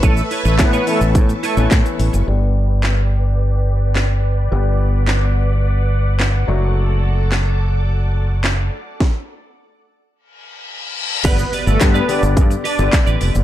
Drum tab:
CC |----------------|----------------|----------------|----------------|
HH |x-o-x-o-x-o-x-o-|----------------|----------------|----------------|
SH |xxxxxxxxxxxxxxxx|----------------|----------------|----------------|
CP |----x-------x---|----x-------x---|----x-------x---|----x-------x---|
SD |----o-------o---|----o-------o---|----o-------o---|----o-------o---|
BD |o---o---o---o---|----------------|----------------|----------------|

CC |----------------|x---------------|
HH |----------------|x-o-x-o-x-o-x-o-|
SH |----------------|xxxxxxxxxxxxxxxx|
CP |----------------|----x-------x---|
SD |o---------------|----o-------o---|
BD |o---------------|o---o---o---o---|